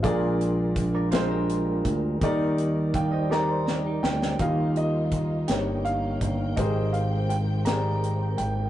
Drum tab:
HH |x-x-x-x-x-x-|x-x-x-------|x-x-x-x-x-x-|x-x-x-x-x-x-|
SD |------o-----|------o-o-oo|------o-----|------o-----|
BD |o---o-----o-|o---o-------|o---o-----o-|o-----------|